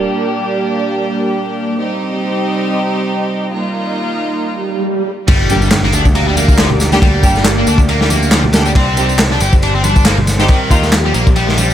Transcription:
Already playing: string section G3 A#3 D4 G4, analog synth pad A#3 G4 D5
1.58 tambourine
1.79 string section G3 C4 D#4 G4, analog synth pad C4 D#5
3.32 tambourine
3.53 string section G3 A#3 D#4 F4, analog synth pad D#4 F5
4.41 swell
4.63 tambourine
5.28 picked electric bass G1, distorted electric guitar G3, analog synth pad A#3 G4 D5, kick, crash, ride, tambourine, impact
5.49 string section G3 A#3 D4 G4, ride, tambourine
5.62 tambourine
5.71 snare, clap, ride, tambourine
5.83 distorted electric guitar A#3, snare
5.92 picked electric bass D2, distorted electric guitar D4, ride, tambourine
6.05 kick, tambourine
6.15 distorted electric guitar A#3, ride, tambourine
6.28 distorted electric guitar G3
6.36 distorted electric guitar A#3, ride, tambourine, high conga
6.48 kick, tambourine
6.58 distorted electric guitar F3, snare, clap, ride
6.70 low conga
6.80 snare, ride, tambourine
6.92 string section G3 A#3 D4 G4, distorted electric guitar G3, snare, tambourine
7.02 distorted electric guitar G3, kick, ride, tambourine
7.23 picked electric bass G1, string section G3 A#3 D4 G4, kick, ride, tambourine
7.36 snare, tambourine
7.45 snare, clap, ride, tambourine
7.58 distorted electric guitar A#3
7.67 picked electric bass D2, distorted electric guitar D4, ride, tambourine
7.78 kick, tambourine
7.89 distorted electric guitar A#3, ride, tambourine
8.01 distorted electric guitar G3, snare
8.10 distorted electric guitar A#3, ride, tambourine, high conga
8.23 tambourine
8.31 distorted electric guitar F3, snare, clap, ride, tambourine
8.44 low conga
8.53 string section G3 A#3 D4 G4, snare, ride, tambourine
8.65 distorted electric guitar G3, ride, tambourine
8.75 picked electric bass C2, analog synth pad G3 C5, distorted electric guitar C4, kick, ride
8.97 string section G3 C4 D#4 G4, ride, tambourine
9.09 tambourine
9.19 snare, clap, ride, tambourine
9.31 distorted electric guitar D4, snare
9.40 picked electric bass G1, distorted electric guitar G4, ride, tambourine
9.53 kick, tambourine
9.62 distorted electric guitar D4, ride, tambourine
9.75 distorted electric guitar C4
9.84 distorted electric guitar D4, ride, tambourine, high conga
9.96 kick, tambourine
10.05 distorted electric guitar A#3, snare, clap, ride
10.18 low conga
10.27 snare, ride, tambourine
10.39 string section G3 C4 D#4 G4, distorted electric guitar C4, snare, tambourine
10.48 distorted electric guitar D#3, analog synth pad F3 G4, kick, ride, tambourine
10.71 picked electric bass D#2, string section G3 A#3 D#4 F4, kick, ride, tambourine
10.83 snare, tambourine
10.92 snare, clap, ride, tambourine
11.05 distorted electric guitar G3
11.14 picked electric bass A#1, distorted electric guitar A#3, ride, tambourine
11.27 kick, tambourine
11.36 distorted electric guitar G3, ride, tambourine
11.48 distorted electric guitar D#3, snare
11.57 distorted electric guitar G3, ride, tambourine, high conga
11.70 tambourine

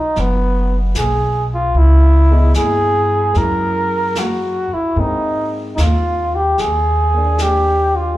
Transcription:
Already playing: grand piano F#3 C#4 D#4 A#4, flugelhorn D#4
0.16 upright bass F#1, brush sweep, snare
0.20 flugelhorn B3
0.95 upright bass B1, flugelhorn G#4, snare, hi-hat pedal
1.54 flugelhorn F4
1.74 upright bass C#2, flugelhorn E4, brush sweep
2.31 grand piano B3 E4 G#4 D#5
2.54 upright bass G2, flugelhorn G#4, snare, hi-hat pedal
3.33 upright bass F#2, grand piano G#3 A#3 C#4, brush sweep, snare
3.37 grand piano E4, flugelhorn A#4
4.15 flugelhorn F4 F#4, snare, hi-hat pedal
4.73 flugelhorn E4, muted upright bass stroke
4.96 upright bass G#2, grand piano G#3 A#3 C4, flugelhorn D#4, brush sweep
5.01 grand piano D#4
5.76 upright bass D#2, flugelhorn D#4 F4, snare, hi-hat pedal
6.36 flugelhorn G4
6.58 upright bass D#2, flugelhorn G#4, brush sweep, snare
7.14 grand piano A#3 D4
7.38 flugelhorn G4, snare, hi-hat pedal
7.96 flugelhorn F4

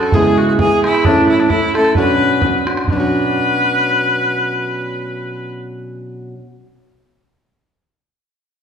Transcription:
Already playing: steel-string acoustic guitar F#3 C#4 D4 F#4, viola A4
0.03 bodhran
0.12 steel-string acoustic guitar C#3 G#3 B3 E4 G#4, viola G#4, bodhran
0.26 bodhran
0.37 viola F#4
0.48 viola F#4
0.59 steel-string acoustic guitar G#3 B3 E4 G#4, viola G#4, bodhran
0.84 steel-string acoustic guitar B3 E4 G#4, viola E4, bodhran
0.95 bodhran
1.04 steel-string acoustic guitar A2 E3 A3 C#4 E4 A4, viola D4, bodhran
1.18 bodhran
1.29 viola E4
1.39 viola D4
1.49 steel-string acoustic guitar A3 C#4 E4, viola E4, bodhran
1.53 steel-string acoustic guitar A4
1.75 steel-string acoustic guitar A3 C#4 E4 A4, viola A4, bodhran
1.84 bodhran
1.95 steel-string acoustic guitar B2 F#3 C#4 D4 F#4, viola B4, bodhran
2.42 steel-string acoustic guitar F#3 C#4 D4 F#4, bodhran
2.67 steel-string acoustic guitar C#4 D4 F#4, bodhran
2.77 bodhran
2.84 steel-string acoustic guitar B2, bodhran
2.89 steel-string acoustic guitar F#3 D4, viola B4
2.96 steel-string acoustic guitar C#4 F#4

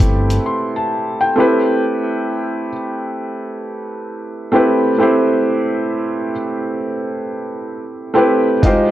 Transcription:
Already playing: felt piano A3 C4 E4 G4 A4
0.00 fingered electric bass G1, kick, closed hi-hat, shaker
0.30 closed hi-hat, shaker
0.46 felt piano C6
0.76 felt piano A5
1.21 felt piano G5
1.35 felt piano A3 C4 E4 G4
1.40 felt piano B4
4.52 felt piano A3 C4 E4 G4 B4
4.98 felt piano A3 C4 E4 G4
5.03 felt piano C5
8.14 felt piano A3 C4 E4 G4
8.18 felt piano B4
8.62 felt piano G#3 D#4 F4 G4, kick, closed hi-hat
8.67 felt piano C5

